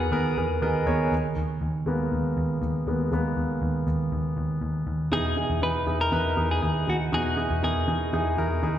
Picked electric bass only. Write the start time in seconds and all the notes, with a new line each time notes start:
0.12 D#2
0.37 E2
0.62 D#2
0.87 D#2
1.12 D#2
1.37 D#2
1.62 D#2
1.86 D#2
2.12 D#2
2.37 D#2
2.62 D#2
2.87 D#2
3.12 D#2
3.37 D#2
3.62 D#2
3.87 D#2
4.12 D#2
4.37 D#2
4.61 D#2
4.87 D#2
5.12 E2
5.50 E2
5.62 E2
5.87 E2
6.12 E2
6.37 E2
6.63 D#2
6.88 D#2
7.13 E2
7.50 E2
7.63 E2
7.88 E2
8.13 E2
8.38 E2
8.63 D#2